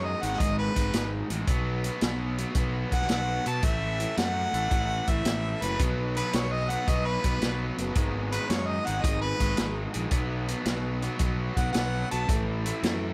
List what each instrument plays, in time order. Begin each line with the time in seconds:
Already playing: fingered electric bass F#2, overdriven electric guitar G#2 D#3 G#3 B3
0.05 harmonica D#5
0.22 fingered electric bass G#1, overdriven electric guitar G#2 D#3 G#3, harmonica F#5, closed hi-hat
0.33 snare
0.39 fingered electric bass G#1, overdriven electric guitar G#2 D#3 G#3, harmonica D#5, kick, closed hi-hat
0.59 harmonica B4
0.75 fingered electric bass G#1, overdriven electric guitar G#2 D#3 G#3, kick, closed hi-hat
0.93 fingered electric bass G#1, overdriven electric guitar G#2 D#3 G#3, snare, closed hi-hat
1.30 fingered electric bass A1, overdriven electric guitar G#2 D#3 G#3, closed hi-hat
1.47 fingered electric bass B1, overdriven electric guitar B2 F#3 B3, kick, closed hi-hat
1.84 overdriven electric guitar B2 F#3 B3, closed hi-hat
2.01 fingered electric bass B1, overdriven electric guitar B2 F#3 B3, snare, closed hi-hat
2.38 overdriven electric guitar B2 F#3 B3, closed hi-hat
2.55 fingered electric bass B1, overdriven electric guitar B2 F#3 B3, kick, closed hi-hat
2.92 fingered electric bass B1, overdriven electric guitar B2 F#3 B3, harmonica F#5, kick, closed hi-hat
3.01 snare
3.09 fingered electric bass B1, overdriven electric guitar B2 F#3 B3, harmonica F#5, snare, closed hi-hat
3.45 overdriven electric guitar B2 F#3 B3, fingered electric bass B2, harmonica A5, closed hi-hat
3.62 fingered electric bass A1, overdriven electric guitar A2 E3 A3, harmonica E5, kick, closed hi-hat
4.00 overdriven electric guitar A2 E3 A3, closed hi-hat
4.17 fingered electric bass F#2, overdriven electric guitar A2 E3 A3, harmonica F#5, snare, closed hi-hat
4.53 fingered electric bass A1, overdriven electric guitar A2 E3 A3, closed hi-hat
4.71 fingered electric bass A1, overdriven electric guitar A2 E3 A3, kick, closed hi-hat
5.07 fingered electric bass A1, overdriven electric guitar A2 E3 A3, harmonica E5, kick, closed hi-hat
5.25 fingered electric bass A1, overdriven electric guitar A2 E3 A3, snare, closed hi-hat
5.62 fingered electric bass F#1, overdriven electric guitar A2 E3 A3, harmonica B4, closed hi-hat
5.79 fingered electric bass B1, overdriven electric guitar B2 F#3 B3, tonewheel organ D#4 F#4 B4 D#5, kick, closed hi-hat
6.16 overdriven electric guitar B2 F#3 B3, harmonica B4, closed hi-hat
6.33 fingered electric bass B1, overdriven electric guitar B2 F#3 B3, harmonica C#5, snare, closed hi-hat
6.52 harmonica D#5
6.70 overdriven electric guitar B2 F#3 B3, harmonica F#5, closed hi-hat
6.87 fingered electric bass B1, overdriven electric guitar B2 F#3 B3, harmonica D#5, kick, closed hi-hat
7.06 harmonica B4
7.24 fingered electric bass B1, overdriven electric guitar B2 F#3 B3, kick, closed hi-hat
7.42 fingered electric bass B1, overdriven electric guitar B2 F#3 B3, snare, closed hi-hat
7.78 fingered electric bass F#1, overdriven electric guitar B2 F#3 B3, closed hi-hat
7.95 fingered electric bass G#1, overdriven electric guitar G#2 D#3 G#3, tonewheel organ D#4 G#4 B4 D#5, kick, closed hi-hat
8.32 overdriven electric guitar G#2 D#3 G#3, harmonica B4, closed hi-hat
8.49 fingered electric bass F#2, overdriven electric guitar G#2 D#3 G#3, harmonica C#5, snare, closed hi-hat
8.67 harmonica D#5
8.84 fingered electric bass G#1, overdriven electric guitar G#2 D#3 G#3, harmonica F#5, closed hi-hat
9.02 fingered electric bass G#1, overdriven electric guitar G#2 D#3 G#3, harmonica D#5, kick, closed hi-hat
9.21 harmonica B4
9.40 fingered electric bass G#1, overdriven electric guitar G#2 D#3 G#3, kick, closed hi-hat
9.57 fingered electric bass G#1, overdriven electric guitar G#2 D#3 G#3, snare, closed hi-hat
9.94 fingered electric bass A#1, overdriven electric guitar G#2 D#3 G#3, closed hi-hat
10.11 fingered electric bass B1, overdriven electric guitar B2 F#3 B3, tonewheel organ D#4 F#4 B4 D#5, kick, closed hi-hat
10.48 overdriven electric guitar B2 F#3 B3, closed hi-hat
10.65 fingered electric bass B1, overdriven electric guitar B2 F#3 B3, snare, closed hi-hat
11.02 overdriven electric guitar B2 F#3 B3, closed hi-hat
11.19 fingered electric bass B1, overdriven electric guitar B2 F#3 B3, kick, closed hi-hat
11.57 fingered electric bass B1, overdriven electric guitar B2 F#3 B3, harmonica F#5, kick, closed hi-hat
11.73 fingered electric bass B1, overdriven electric guitar B2 F#3 B3, harmonica F#5, snare, closed hi-hat
12.11 fingered electric bass B1, overdriven electric guitar B2 F#3 B3, harmonica A5, closed hi-hat
12.27 fingered electric bass A1, overdriven electric guitar A2 E3 A3, tonewheel organ E4 A4 C#5 E5, kick, closed hi-hat
12.66 overdriven electric guitar A2 E3 A3, closed hi-hat
12.83 fingered electric bass F#2, overdriven electric guitar A2 E3 A3, snare, closed hi-hat